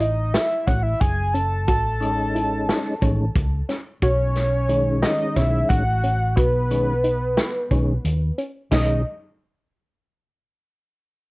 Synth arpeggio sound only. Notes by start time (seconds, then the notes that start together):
0.00 E4
0.67 C#4
1.34 C#4
1.68 F#4
2.35 E4
3.02 C#4
3.69 C#4
4.03 F#4
4.69 D#4
5.36 C#4
6.04 C#4
6.37 F#4
7.04 D#4
7.71 C#4
8.38 C#4
8.72 B3